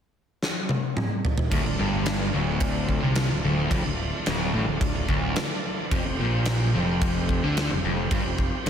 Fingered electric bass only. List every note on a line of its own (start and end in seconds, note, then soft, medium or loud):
1.52 1.64 D1 loud
1.65 1.78 D1 medium
1.80 2.30 G1 medium
2.35 2.99 D1 loud
3.04 3.29 C2 medium
3.32 3.43 D1 medium
3.45 3.70 D1 loud
3.71 3.84 F1 loud
3.86 4.11 D1 medium
4.28 4.53 D1 loud
4.56 4.68 A1 medium
4.69 4.81 D1 medium
4.81 4.94 D1 medium
4.98 5.08 D1 medium
5.09 5.34 D1 medium
5.92 6.04 F1 loud
6.06 6.18 F1 medium
6.21 6.71 A#1 medium
6.76 7.40 F1 loud
7.44 7.69 D2 medium
7.71 7.83 F1 medium
7.84 8.09 F1 loud
8.11 8.24 G1 loud
8.25 8.51 F1 medium
8.66 8.70 F1 loud